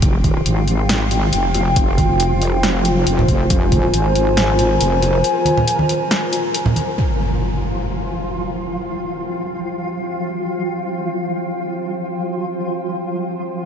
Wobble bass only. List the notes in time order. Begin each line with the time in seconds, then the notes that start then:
0.03 F1
0.46 G#1
1.33 F1
1.76 F1
3.07 F1
3.50 F1
3.94 G#1
4.81 F1